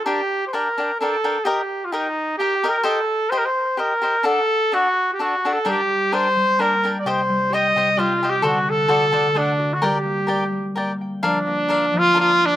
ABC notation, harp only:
X:1
M:3/4
L:1/8
Q:"Swing" 1/4=129
K:Gm
V:1 name="Harp"
z6 | z6 | z6 | z6 |
G, z g G, B, g | C, G, G C, G, G | D, z ^F D, A, F | G, B, g G, B, g |
[K:Bb] F, B, D F, B, D |]